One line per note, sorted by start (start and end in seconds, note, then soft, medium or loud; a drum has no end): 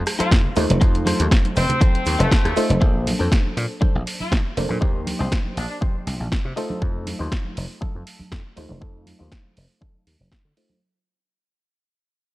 0.00 0.54 A3 medium
0.00 0.54 D#4 medium
0.00 0.54 F4 medium
0.00 0.54 C5 medium
0.06 muted clean electric guitar stroke soft
0.06 cross-stick medium
0.06 open hi-hat loud
0.06 maracas medium
0.19 0.44 D#4 medium
0.19 0.45 F4 medium
0.19 0.35 F4 loud
0.19 0.45 A4 medium
0.19 0.45 C5 loud
0.19 muted slap bass stroke soft
0.19 closed hi-hat medium
0.19 high conga medium
0.19 maracas soft
0.31 0.40 F2 medium
0.31 kick loud
0.31 snare loud
0.31 closed hi-hat medium
0.31 maracas medium
0.44 low conga medium
0.56 0.65 D#2 loud
0.56 0.79 A3 loud
0.56 0.79 D#4 medium
0.56 0.79 F4 medium
0.56 0.79 C5 loud
0.56 open hi-hat medium
0.56 maracas loud
0.69 0.77 F1 medium
0.69 muted clean electric guitar stroke soft
0.69 closed hi-hat medium
0.69 high conga medium
0.69 maracas soft
0.81 1.12 F2 loud
0.81 2.54 A3 medium
0.81 0.94 D#4 loud
0.81 2.54 D#4 medium
0.81 0.95 F4 loud
0.81 2.54 F4 medium
0.81 0.95 A4 loud
0.81 0.95 C5 loud
0.81 2.54 C5 medium
0.81 kick loud
0.81 closed hi-hat medium
0.81 maracas medium
0.94 closed hi-hat soft
0.94 maracas soft
1.06 1.31 D#4 medium
1.06 1.31 F4 medium
1.06 1.32 A4 medium
1.06 1.32 C5 loud
1.06 cross-stick medium
1.06 open hi-hat loud
1.06 high conga loud
1.06 maracas loud
1.20 1.27 D#2 medium
1.20 closed hi-hat medium
1.20 maracas soft
1.31 kick loud
1.31 snare loud
1.31 closed hi-hat medium
1.45 closed hi-hat soft
1.45 high conga medium
1.45 maracas soft
1.56 1.65 F1 medium
1.56 2.17 C4 loud
1.56 muted clean electric guitar stroke soft
1.56 open hi-hat medium
1.56 maracas medium
1.69 closed hi-hat medium
1.69 low conga medium
1.69 maracas soft
1.81 1.94 D#4 medium
1.81 1.95 F4 medium
1.81 1.95 A4 medium
1.81 1.95 C5 loud
1.81 kick loud
1.81 closed hi-hat medium
1.81 high conga medium
1.81 maracas medium
1.95 muted slap bass stroke soft
1.95 closed hi-hat soft
2.06 2.15 D#2 medium
2.06 muted clean electric guitar stroke soft
2.06 open hi-hat loud
2.06 maracas medium
2.19 2.27 F1 medium
2.19 2.70 A3 loud
2.19 2.44 D#4 medium
2.19 2.45 F4 medium
2.19 2.45 A4 medium
2.19 2.45 C5 loud
2.19 closed hi-hat medium
2.19 high conga medium
2.19 maracas soft
2.31 kick loud
2.31 snare loud
2.31 closed hi-hat medium
2.31 maracas medium
2.45 2.52 D#2 medium
2.45 cross-stick medium
2.45 closed hi-hat soft
2.45 maracas soft
2.56 2.79 A3 loud
2.56 2.79 D#4 medium
2.56 2.79 F4 medium
2.56 2.79 C5 loud
2.56 muted slap bass stroke soft
2.56 open hi-hat medium
2.56 maracas loud
2.69 2.77 F1 medium
2.69 muted clean electric guitar stroke soft
2.69 closed hi-hat medium
2.69 high conga loud
2.69 maracas soft
2.81 3.12 A#1 loud
2.81 4.54 A#3 medium
2.81 3.00 D4 loud
2.81 4.54 D4 medium
2.81 3.01 A4 loud
2.81 4.54 A4 medium
2.81 3.01 C5 loud
2.81 4.55 C5 medium
2.81 kick loud
2.81 maracas soft
3.07 open hi-hat loud
3.07 high conga medium
3.07 maracas medium
3.19 3.27 F2 medium
3.19 3.38 D4 medium
3.19 3.38 A4 medium
3.19 3.39 C5 medium
3.19 maracas medium
3.32 kick loud
3.32 snare loud
3.45 high conga medium
3.56 3.65 A#2 medium
3.56 muted clean electric guitar stroke soft
3.56 open hi-hat medium
3.56 maracas medium
3.70 maracas medium
3.81 3.94 D4 medium
3.81 3.95 A4 medium
3.81 3.95 C5 loud
3.81 muted slap bass stroke soft
3.81 kick loud
3.81 high conga medium
3.81 maracas soft
3.95 4.02 A#1 medium
4.06 muted clean electric guitar stroke soft
4.06 open hi-hat loud
4.06 maracas loud
4.20 4.35 F4 medium
4.20 muted slap bass stroke soft
4.20 high conga medium
4.20 maracas medium
4.32 4.40 A#1 medium
4.32 kick loud
4.32 snare loud
4.57 4.65 F1 medium
4.57 4.79 A#3 medium
4.57 4.79 D4 medium
4.57 4.79 A4 medium
4.57 4.79 C5 loud
4.57 open hi-hat medium
4.57 maracas loud
4.69 4.77 A#2 medium
4.69 muted clean electric guitar stroke medium
4.69 high conga medium
4.69 maracas medium
4.81 5.12 D#2 loud
4.81 6.54 A#3 medium
4.81 5.00 D#4 loud
4.81 6.54 D#4 medium
4.81 5.01 G4 loud
4.81 6.54 G4 medium
4.81 5.01 C5 loud
4.81 6.54 C5 medium
4.81 kick loud
5.07 open hi-hat loud
5.07 high conga loud
5.07 maracas medium
5.19 5.27 C2 medium
5.19 5.38 D#4 medium
5.19 5.38 G4 medium
5.19 5.39 C5 loud
5.19 maracas soft
5.32 kick loud
5.32 snare loud
5.45 high conga medium
5.56 5.65 A#1 medium
5.56 5.65 D4 medium
5.56 muted clean electric guitar stroke soft
5.56 open hi-hat medium
5.69 5.77 D4 medium
5.69 maracas soft
5.81 5.95 D#4 medium
5.81 5.95 G4 medium
5.81 5.95 C5 loud
5.81 kick loud
5.81 high conga loud
5.81 maracas soft
5.95 muted slap bass stroke soft
6.06 6.15 C2 medium
6.06 muted clean electric guitar stroke soft
6.06 open hi-hat loud
6.20 6.27 A#1 medium
6.20 high conga medium
6.20 maracas soft
6.32 kick loud
6.32 snare loud
6.45 6.52 C3 medium
6.56 6.79 A3 loud
6.56 7.06 D#4 medium
6.56 6.79 D#4 medium
6.56 7.07 F4 medium
6.56 6.79 F4 medium
6.56 7.07 A4 loud
6.56 6.79 C5 loud
6.56 open hi-hat medium
6.70 high conga medium
6.70 maracas soft
6.82 7.12 F2 loud
6.82 8.54 A3 medium
6.82 8.54 D#4 medium
6.82 kick loud
7.07 open hi-hat loud
7.07 high conga medium
7.07 maracas medium
7.19 7.27 D#2 medium
7.19 7.38 D#4 medium
7.19 7.38 F4 medium
7.19 7.39 C5 loud
7.32 kick loud
7.32 snare loud
7.45 high conga medium
7.56 7.65 F1 medium
7.56 muted clean electric guitar stroke soft
7.56 open hi-hat medium
7.56 maracas medium
7.81 7.94 D#4 medium
7.81 7.95 F4 medium
7.81 7.95 A4 loud
7.81 muted slap bass stroke soft
7.81 kick loud
7.81 high conga medium
7.81 maracas soft
7.95 8.02 F2 medium
8.06 muted clean electric guitar stroke soft
8.06 open hi-hat loud
8.19 muted slap bass stroke soft
8.19 high conga medium
8.19 maracas soft
8.32 8.40 F2 medium
8.32 kick loud
8.32 snare loud
8.57 8.65 D#2 medium
8.57 8.79 A3 medium
8.57 8.79 D#4 medium
8.57 8.79 F4 medium
8.57 8.79 C5 loud
8.57 open hi-hat medium
8.69 8.78 F1 medium
8.69 muted clean electric guitar stroke medium
8.69 high conga medium
8.69 maracas soft
8.81 9.12 F2 loud
8.81 10.53 A3 medium
8.81 9.00 D#4 loud
8.81 10.54 D#4 medium
8.81 9.01 F4 loud
8.81 10.54 F4 medium
8.81 9.01 A4 loud
8.81 10.54 C5 medium
8.81 kick loud
8.81 maracas soft
9.06 open hi-hat loud
9.06 high conga medium
9.06 maracas medium
9.19 9.28 D#2 medium
9.19 9.38 D#4 medium
9.19 9.38 F4 medium
9.19 9.39 C5 medium
9.32 kick loud
9.32 snare loud
9.45 high conga medium
9.56 9.65 F1 medium
9.56 muted clean electric guitar stroke soft
9.56 open hi-hat medium
9.56 maracas medium
9.70 maracas soft
9.81 9.94 D#4 medium
9.81 9.95 F4 medium
9.81 9.95 A4 medium
9.81 kick loud
9.81 high conga medium
9.81 maracas soft
9.95 muted slap bass stroke soft
10.07 10.15 D#2 medium
10.07 open hi-hat loud
10.19 10.27 F1 medium
10.19 high conga medium
10.19 maracas soft
10.32 kick loud
10.32 snare loud
10.45 10.52 D3 medium
10.57 10.79 A3 medium
10.57 10.79 D#4 medium
10.57 10.79 F4 medium
10.57 10.79 C5 medium
10.57 open hi-hat medium
10.69 muted clean electric guitar stroke medium
10.69 high conga medium
10.69 maracas soft